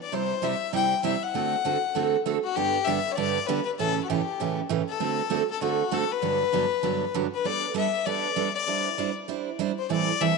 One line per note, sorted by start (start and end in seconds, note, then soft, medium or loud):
0.02 0.15 D5 medium
0.12 0.32 C3 medium
0.12 0.33 G3 medium
0.12 0.33 C4 medium
0.12 0.33 E4 medium
0.12 0.33 G4 medium
0.12 0.46 C5 medium
0.42 0.53 C3 medium
0.42 0.54 G3 medium
0.42 0.54 C4 medium
0.42 0.54 E4 medium
0.42 0.54 G4 medium
0.42 0.74 E5 medium
0.72 0.93 C3 medium
0.72 0.93 G3 medium
0.72 0.93 C4 medium
0.72 0.93 E4 medium
0.72 0.94 G4 medium
0.72 1.02 G5 medium
1.03 1.15 C3 medium
1.03 1.15 G3 medium
1.03 1.15 C4 medium
1.03 1.15 E4 medium
1.03 1.15 G4 medium
1.03 1.24 E5 medium
1.23 2.14 F#5 medium
1.34 1.54 D3 medium
1.34 1.55 A3 medium
1.34 1.55 C4 medium
1.34 1.55 F#4 medium
1.34 1.55 A4 medium
1.65 1.76 D3 medium
1.65 1.76 A3 medium
1.65 1.76 C4 medium
1.65 1.76 F#4 medium
1.65 1.76 A4 medium
1.95 2.15 D3 medium
1.95 2.15 A3 medium
1.95 2.16 C4 medium
1.95 2.16 F#4 medium
1.95 2.16 A4 medium
2.26 2.37 D3 medium
2.26 2.37 A3 medium
2.26 2.37 C4 medium
2.26 2.37 F#4 medium
2.26 2.37 A4 medium
2.44 2.57 F#4 medium
2.56 2.76 G2 medium
2.56 2.76 D3 medium
2.56 2.77 G3 medium
2.56 2.77 B3 medium
2.56 2.77 D4 medium
2.56 2.86 G4 loud
2.56 2.77 G4 medium
2.85 2.98 G2 medium
2.85 2.98 D3 medium
2.85 2.98 G3 medium
2.85 2.98 B3 medium
2.85 2.98 D4 medium
2.85 2.98 G4 medium
2.85 3.13 E5 medium
3.12 3.17 C#5 medium
3.12 3.48 D5 loud
3.17 3.37 G2 medium
3.17 3.37 D3 medium
3.17 3.38 G3 medium
3.17 3.37 B3 medium
3.17 3.38 D4 medium
3.17 3.38 G4 medium
3.47 3.59 G2 medium
3.47 3.59 D3 medium
3.47 3.59 G3 medium
3.47 3.59 B3 medium
3.47 3.59 D4 medium
3.47 3.60 G4 medium
3.47 3.64 B4 medium
3.65 3.71 B4 medium
3.78 3.99 A2 medium
3.78 3.99 C#3 medium
3.78 3.99 E3 medium
3.78 3.99 A3 medium
3.78 3.99 C#4 medium
3.78 3.99 G4 medium
3.78 4.02 A4 loud
4.04 4.10 F#4 soft
4.08 4.20 A2 medium
4.08 4.20 C#3 medium
4.08 4.20 E3 medium
4.08 4.20 A3 medium
4.08 4.21 C#4 medium
4.08 4.58 G4 medium
4.08 4.21 G4 medium
4.40 4.60 A2 medium
4.40 4.60 C#3 medium
4.40 4.60 E3 medium
4.40 4.60 A3 medium
4.40 4.60 C#4 medium
4.40 4.60 G4 medium
4.69 4.81 A2 medium
4.69 4.81 C#3 medium
4.69 4.81 E3 medium
4.69 4.81 A3 medium
4.69 4.81 C#4 medium
4.69 4.81 G4 medium
4.89 5.46 A4 medium
5.00 5.20 D3 medium
5.00 5.21 A3 medium
5.00 5.20 C4 medium
5.00 5.21 F#4 medium
5.00 5.21 A4 medium
5.30 5.42 D3 medium
5.30 5.42 A3 medium
5.30 5.42 C4 medium
5.30 5.42 F#4 medium
5.30 5.42 A4 medium
5.51 5.61 A4 medium
5.61 5.82 D3 medium
5.61 5.82 A3 medium
5.61 5.82 C4 medium
5.61 5.95 F#4 medium
5.61 5.82 F#4 medium
5.61 5.82 A4 medium
5.91 6.03 D3 medium
5.91 6.03 A3 medium
5.91 6.03 C4 medium
5.91 6.03 F#4 medium
5.91 6.03 A4 medium
5.91 6.13 A4 medium
6.12 7.15 B4 loud
6.22 6.42 G2 medium
6.22 6.43 D3 medium
6.22 6.43 F#3 medium
6.22 6.43 B3 medium
6.22 6.43 D4 medium
6.22 6.43 G4 medium
6.53 6.64 G2 medium
6.53 6.64 D3 medium
6.53 6.65 F#3 medium
6.53 6.65 B3 medium
6.53 6.65 D4 medium
6.53 6.65 G4 medium
6.83 7.04 G2 medium
6.83 7.04 D3 medium
6.83 7.04 F#3 medium
6.83 7.04 B3 medium
6.83 7.04 D4 medium
6.83 7.04 G4 medium
7.14 7.26 G2 medium
7.14 7.26 D3 medium
7.14 7.26 F#3 medium
7.14 7.26 B3 medium
7.14 7.26 D4 medium
7.14 7.26 G4 medium
7.34 7.48 B4 medium
7.45 7.65 G3 medium
7.45 7.65 B3 medium
7.45 7.65 D4 medium
7.45 7.65 A4 medium
7.45 7.76 D5 loud
7.74 7.86 G3 medium
7.74 7.86 B3 medium
7.74 7.87 D4 medium
7.74 7.87 A4 medium
7.74 8.07 E5 medium
8.06 8.26 G3 medium
8.06 8.27 B3 medium
8.06 8.27 D4 medium
8.06 8.27 A4 medium
8.06 8.55 D5 loud
8.36 8.48 G3 medium
8.36 8.48 B3 medium
8.36 8.48 D4 medium
8.36 8.48 A4 medium
8.55 9.13 D5 loud
8.67 8.88 G3 medium
8.67 8.88 D4 medium
8.67 8.88 E4 medium
8.67 8.88 C5 medium
8.98 9.09 G3 medium
8.98 9.10 D4 medium
8.98 9.10 E4 medium
8.98 9.10 C5 medium
9.28 9.49 G3 medium
9.28 9.49 D4 medium
9.28 9.49 E4 medium
9.28 9.49 C5 medium
9.59 9.70 G3 medium
9.59 9.70 D4 medium
9.59 9.71 E4 medium
9.59 9.71 C5 medium
9.78 9.90 C5 medium
9.90 10.10 A2 medium
9.90 10.10 E3 medium
9.90 10.10 G3 medium
9.90 10.10 C4 medium
9.90 10.11 E4 medium
9.90 10.11 A4 medium
9.90 10.23 D5 loud
10.21 10.32 A2 medium
10.21 10.32 E3 medium
10.21 10.32 G3 medium
10.21 10.32 C4 medium
10.21 10.32 E4 medium
10.21 10.32 A4 medium
10.21 10.38 E5 loud